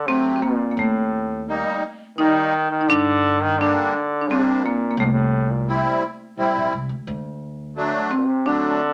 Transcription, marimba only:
0.08 C4
0.36 C4
0.42 A#3
0.71 A#3
0.79 A3
2.18 D#4
2.81 D#4
2.90 D4
3.61 D4
4.21 D4
4.31 C4
4.66 A#3
4.91 A#3
5.00 A3
8.11 C4
8.46 D4

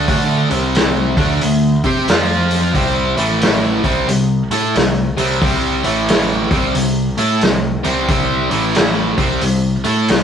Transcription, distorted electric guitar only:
0.08 D3 A3 D4
0.51 C3 G3 C4
1.17 D3 A3 D4
1.43 D3 A3
1.85 C4 G4 C5
2.09 F3 C4 F4
2.74 C3 G3 C4
3.16 A2 E3 A3
3.84 C3 G3 C4
4.08 C3 G3
4.51 A3 E4 A4
4.75 C3 G3
5.17 C3 G3 C4
5.42 C3 G3 C4
5.84 A2 E3 A3
6.51 C3 G3 C4
6.74 C3 G3
7.18 A3 E4 A4
7.42 C3 G3
7.83 C3 G3 C4
8.08 C3 G3 C4
8.50 A2 E3 A3
9.17 C3 G3 C4
9.42 C3 G3
9.84 A3 E4 A4
10.09 C3 G3

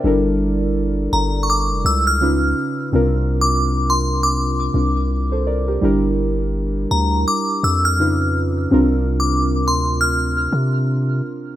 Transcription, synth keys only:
Already playing: D5
0.04 G3 D4 E4 A4 A#4
2.21 C#3 C#4 D#4 F4 B4
2.92 C3 C4 D4 F4 A#4
4.74 C3 C4 D4 F4 A#4
5.32 A4 C5
5.47 A#4 D5
5.68 G4 A#4
5.81 G3 D4 E4 G4 A#4
7.99 C#3 C#4 D#4 F4 B4
8.70 C3 C4 D4 F4 A#4

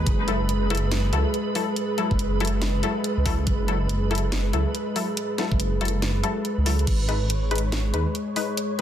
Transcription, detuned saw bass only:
0.07 F#1
0.41 F#1
1.13 C#2
2.11 F#1
3.17 C#2
3.47 F#1
3.81 F#1
4.53 C#2
5.51 F#1
6.58 C#2
6.87 G#1
7.22 G#1
7.94 D#2

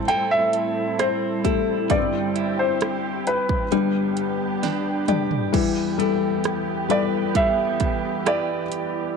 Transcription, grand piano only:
0.08 G5
0.31 E5
0.99 C5
1.91 D5
2.59 C5
3.27 B4
6.91 D5
7.36 E5
8.28 D5

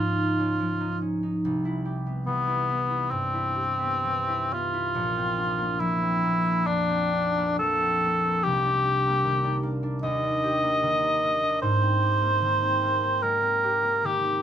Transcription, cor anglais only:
Already playing: F4
2.26 B3
3.10 C4
4.53 F4
5.80 E4
6.67 D4
7.59 A4
8.43 G4
10.03 D#5
11.62 C5
13.22 A#4
14.05 G4

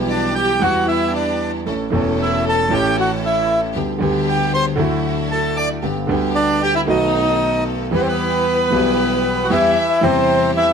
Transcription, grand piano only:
Already playing: B1 B2 E3 G3 B3 G4
0.60 E2 E3 G3 B3
0.64 G4
1.66 A1 A2 E3 A3 C#4 A4
1.90 E1 E2 E3 A3 C#4 A4
2.69 A1 A2 E3 A3 C#4 A4
3.75 D2 D3 G3 B3 G4
3.98 D2 D3 G3 B3 G4
4.76 D2 D3 F#3 A3 E4
5.82 G1 G2 D3 G3 B3 G4
6.08 D2 D3 G3 B3 G4
6.86 B1 B2 D#3 A3 B3
6.90 F#4
7.91 E2 E3 G3 B3 G4
8.70 B1 B2 E3 G3 B3
8.75 G4
9.50 E2 E3 G3 B3 G4
10.01 E2 E3 G3 C4 G4

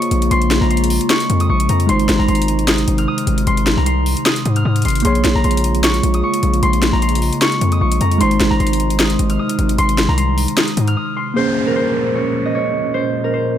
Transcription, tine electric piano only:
Already playing: A#3 G#4 C#5
1.87 G#3 D#4
1.91 C5
5.02 A#3 G#4
5.07 C#5
8.18 G#3 D#4
8.23 C5
11.34 A#3 G#4
11.38 C#4

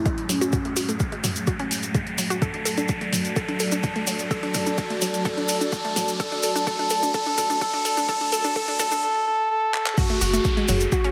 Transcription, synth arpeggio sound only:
0.06 G#3
0.29 F#3
0.41 F#4
0.53 F#4
0.65 A3
0.77 F#4
0.89 A3
1.12 G#3
1.24 F#3
1.47 F#4
1.60 C#4
1.95 G#3
2.18 F#3
2.30 F#4
2.42 A4
2.54 D4
2.65 A4
2.78 D4
3.01 A3
3.13 F#3
3.36 A4
3.48 D4
3.60 A4
3.72 D4
3.96 A3
4.07 F#3
4.31 A4
4.43 D4
4.54 A4
4.67 D4
4.90 A3
5.02 F#3
5.25 A4
5.37 D4
5.49 A4
5.61 D4
5.85 A3
5.96 F#3
6.20 A4
6.32 D4
6.43 A4
6.56 D4
6.67 A4
6.79 D4
6.91 A4
7.03 D4
7.14 A4
7.26 D4
7.38 A4
7.50 D4
7.61 A4
7.74 D4
7.85 A4
7.97 D4
8.09 A4
8.21 D4
8.32 A4
8.44 D4
8.56 A4
8.68 D4
8.80 A4
8.92 D4
9.98 F#4
10.10 A3
10.21 F#4
10.33 A3
10.57 G#3
10.69 F#3
10.92 F#4
11.04 C#4

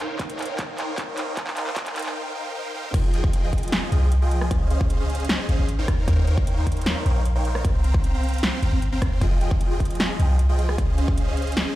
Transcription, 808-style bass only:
2.94 F1
3.92 C2
4.51 C#2
5.49 G#1
5.59 G#1
5.88 D#2
6.08 D#2
7.06 A#1
7.65 C2
8.63 G1
8.73 G1
9.02 D#2
9.21 F1
10.19 C2
10.78 C#2

